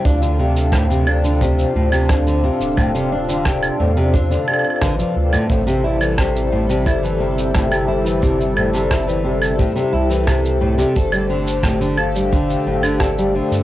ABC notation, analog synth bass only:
X:1
M:4/4
L:1/16
Q:1/4=88
K:Am
V:1 name="Analog synth bass" clef=bass
D,,8- D,, z D,,4 z D,,,- | D,,,4- D,,, z E,,3 z3 A,,, z D,, z | A,,,8 G,,,8- | G,,,8 z2 C,,4- C,, z |
G,,,8- G,,, z G,,,4 z G,, |]